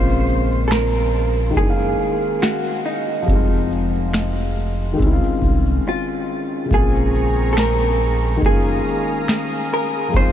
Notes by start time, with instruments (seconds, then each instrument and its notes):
Already playing: sub bass A#1, felt piano C#3 G#3 A#3 C4 F4, hollow-body jazz guitar C5
0.11 shaker
0.28 shaker
0.52 shaker
0.68 hollow-body jazz guitar A4, finger snap, snare, shaker
0.72 hollow-body jazz guitar A#4, closed hi-hat
0.94 shaker
1.15 shaker
1.36 shaker
1.50 felt piano D#3 G#3
1.56 sub bass F#1, felt piano A#3 C#4, hollow-body jazz guitar G#4, kick, closed hi-hat, shaker
1.63 felt piano E4
1.70 felt piano F5
1.80 shaker
2.02 shaker
2.22 shaker
2.40 hollow-body jazz guitar F#4, finger snap, snare, shaker
2.44 closed hi-hat
2.66 shaker
2.86 hollow-body jazz guitar D#4, shaker
3.09 shaker
3.22 felt piano F3 G3
3.27 sub bass F1, felt piano C4, kick, closed hi-hat, shaker
3.32 felt piano G#3 D#4 F4
3.53 shaker
3.71 shaker
3.72 shaker
3.95 shaker
4.12 finger snap, snare, closed hi-hat, shaker
4.37 shaker
4.56 shaker
4.58 shaker
4.80 shaker
4.93 felt piano D#3 G#3
4.99 sub bass C#2, felt piano C4, kick, closed hi-hat, shaker
5.03 felt piano C#4 E4
5.13 felt piano F4
5.23 sub bass C2, shaker
5.42 sub bass C2, kick, shaker
5.45 shaker
5.66 shaker
5.89 hollow-body jazz guitar F4
6.65 felt piano C#3 G#3
6.70 sub bass A#1, felt piano A#3, analog synth pad C4 G#4 A#5 C#6, hollow-body jazz guitar G#4, kick, closed hi-hat, shaker
6.75 felt piano C4 F4
6.96 shaker
7.13 shaker
7.15 shaker
7.38 shaker
7.53 hollow-body jazz guitar A4, shaker
7.57 hollow-body jazz guitar A#4, finger snap, snare, closed hi-hat
7.80 shaker
8.01 shaker
8.23 shaker
8.37 felt piano D#3 G#3
8.42 sub bass F#1, felt piano A#3, analog synth pad G#4 F5 A#5 D#6, hollow-body jazz guitar G#4, kick, closed hi-hat, shaker
8.47 felt piano C#4 F4
8.67 shaker
8.88 shaker
9.09 shaker
9.26 finger snap, snare, closed hi-hat, shaker
9.52 shaker
9.73 hollow-body jazz guitar A#4, shaker
9.95 shaker
10.08 felt piano F3 G#3
10.13 sub bass F1, felt piano C4, hollow-body jazz guitar C5, analog synth pad F5 C6, kick, closed hi-hat, shaker
10.18 felt piano D#4 F4